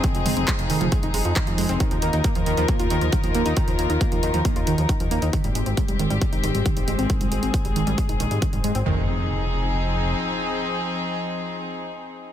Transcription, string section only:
\new Staff \with { instrumentName = "String section" } { \time 4/4 \key f \minor \tempo 4 = 136 << { <f aes'>1 | <ees bes'>1~ | <ees bes'>1 | g'1 |
aes'1 | <f c' ees' aes'>1~ | <f c' ees' aes'>1 | } \\ { <c' ees'>1 | f'1~ | f'1 | <aes c'>1~ |
<aes c'>1 | r1 | r1 | } >> }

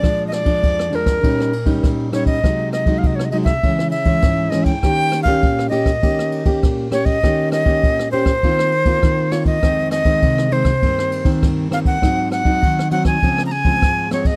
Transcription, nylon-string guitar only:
\new Staff \with { instrumentName = "Nylon-string guitar" } { \time 4/4 \key ees \mixolydian \tempo 4 = 100 << { <f aes d'>8. <f aes d'>8. <f aes d'>8 <g des' ees'>8 r16 <g des' ees'>8. <g des' ees'>8 | <ges aes ees'>8. <ges aes ees'>8. <ges aes ees'>16 r16 <fes aes des'>8 r16 <fes aes des'>8. <fes aes des'>16 r16 | <bes des' g'>8. <bes des' g'>8. <bes des' g'>16 r16 <bes des' g'>8. <bes des' g'>8. <bes des' g'>8 | <bes des' g'>8. <bes des' g'>8. <bes des' g'>16 r16 <bes c' f'>8 r16 <bes c' f'>8. <bes c' f'>8 |
<ees aes c'>8. <ees aes c'>8. <ees aes c'>16 r16 <ees bes c'>8. <ees bes c'>8. <ees bes c'>8 | <ges c' ees'>8. <ges c' ees'>8. <ges c' ees'>8 <f aes c'>8 r16 <f aes c'>8. <f aes c'>16 r16 | } \\ { bes,4 f,4 bes,4 bes,4 | c4 c4 des4 aes,4 | ees4 bes,4 ees4 bes,4 | ees4 bes,4 ees4 ees4 |
f,4 c4 g,4 g,4 | aes,4 ees4 des4 aes,4 | } >> }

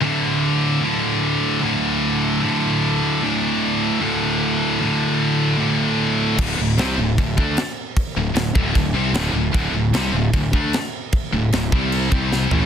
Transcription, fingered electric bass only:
\new Staff \with { instrumentName = "Fingered electric bass" } { \clef bass \time 4/4 \key c \mixolydian \tempo 4 = 152 r1 | r1 | r1 | r1 |
d,,8 d,,8 c,8 d,,8 d,,8 d,8 r4 | r8 d,,8 d,,8 d,,8 d,,8 c,8 d,,8 d,,8 | d,,8 d,,8 c,8 d,,8 d,,8 d,8 r4 | r8 d,,8 d,,8 c,4 c,4 a,,8 | }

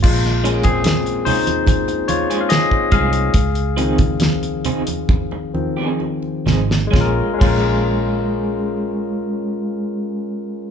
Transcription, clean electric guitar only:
\new Staff \with { instrumentName = "Clean electric guitar" } { \time 4/4 \key bes \minor \tempo 4 = 67 r8 <aes des' f' aes'>16 r8. <aes des' f' aes'>16 r4 <aes des' f' aes'>16 r8 <aes des' f' aes'>16 r16 | r8 <f c' ees' aes'>16 r8. <f c' ees' aes'>16 r4 <f c' ees' aes'>16 r8 <f c' ees' aes'>16 r16 | <aes des' f' aes'>16 r16 <aes des' f' aes'>2.~ <aes des' f' aes'>8 | }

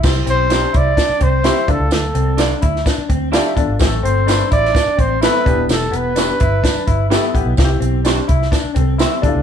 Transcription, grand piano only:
\new Staff \with { instrumentName = "Grand piano" } { \time 4/4 \key c \major \tempo 4 = 127 << { <e' g' c''>4. r4. <e' g' c''>8 <d' f' a'>8~ | <d' f' a'>4 r2 <d' f' g'>8 <d' f' a'>8 | <a c' aes' a'>4. r4. <b c' a'>8 <b e' g'>8~ | <b e' g'>4 r2 <b e' a'>8 <b e' g'>8 |
<c' e' f' g'>4. r2 <d' e' f' a'>8 | } \\ { r1 | r1 | r1 | r1 |
r2 r8 <c' a'>8 <b g'>4 | } >> }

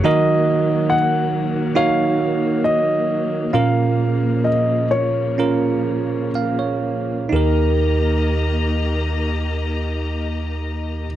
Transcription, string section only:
\new Staff \with { instrumentName = "String section" } { \clef bass \time 4/4 \key ees \minor \tempo 4 = 64 << { bes1~ | bes1 | <ees bes g' ees'' bes''>1 | } \\ { <ees ges>1 | <des f>1 | r1 | } >> }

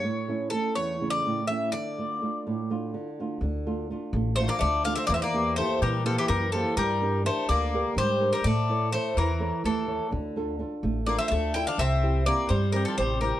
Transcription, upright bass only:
\new Staff \with { instrumentName = "Upright bass" } { \clef bass \time 7/8 \key d \minor \tempo 4 = 125 r2. r8 | r2. r8 | d,4. a,,4 d,4 | e,4. bes,4 fis,4 |
g,4. d,4 gis,4 | a,4. e,4 ees,4 | d,4. a,,4 d,4 | c,4. g,4 a,,4 | }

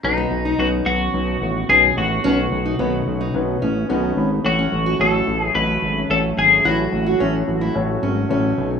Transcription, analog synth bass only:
\new Staff \with { instrumentName = "Analog synth bass" } { \clef bass \time 4/4 \key b \mixolydian \tempo 4 = 109 b,,8 b,,8 b,,8 b,,8 b,,8 a,,8 b,,8 a,,8 | b,,8 b,,8 b,,8 b,,8 b,,8 a,,8 b,,8 gis,,8 | a,,8 a,,8 a,,8 a,,8 a,,8 gis,,8 a,,8 gis,,8 | a,,8 a,,8 a,,8 a,,8 a,,8 gis,,8 a,,8 b,,8 | }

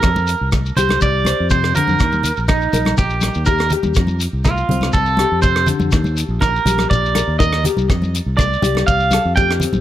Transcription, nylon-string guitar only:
\new Staff \with { instrumentName = "Nylon-string guitar" } { \time 4/4 \key f \mixolydian \tempo 4 = 122 << { r4. g'4 c''4. | r4. bes'4. g'8 g'8 | r4. c'4 g'4. | r4. g'4 bes'8 bes'8 g'8 |
r4. g'4 a'8 g'8 c'8 | } \\ { f,4 a4 r4 c8 d8 | ees4 ees'4 bes,4 ees'4 | f,4 a4 f,4 c8 d8 | ees4 ees'4 bes,4 ees'4 |
f,4 a4 f,4 a4 | } >> }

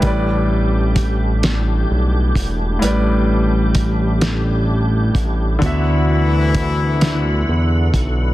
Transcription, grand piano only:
\new Staff \with { instrumentName = "Grand piano" } { \time 6/8 \key a \dorian \tempo 4. = 43 << { g''16 r2 r8. | r2. | r2. | } \\ { <a, g b' d''>2. | <a, g b' d''>2. | <d b fis' e''>2. | } >> }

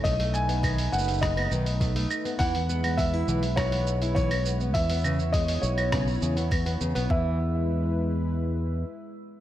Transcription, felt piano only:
\new Staff \with { instrumentName = "Felt piano" } { \time 4/4 \key e \major \tempo 4 = 102 dis''8 gis''4 fis''8 dis''4. r8 | fis''4 e''4 cis''4 cis''8. r16 | e''4 dis''8 cis''4. r4 | e''1 | }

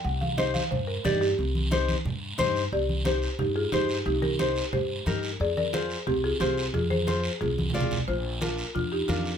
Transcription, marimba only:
\new Staff \with { instrumentName = "Marimba" } { \time 4/4 \key c \minor \tempo 4 = 179 fis''8 f''8 ees''8 f''8 c''8 bes'8 g'8 g'8~ | g'2~ g'8 r4. | <g' d''>4 <g' c''>4 <ees' g'>8 <f' aes'>8 <ees' g'>4 | <ees' g'>8 <g' bes'>8 <g' c''>4 <g' c''>4. r8 |
<aes' d''>8 <bes' d''>8 <aes' c''>4 <c' g'>8 <f' aes'>8 <c' g'>4 | <f' aes'>8 <aes' c''>8 <aes' c''>4 <f' aes'>4. r8 | <f' c''>4 <f' bes'>4 <d' f'>8 <ees' g'>8 <d' f'>4 | }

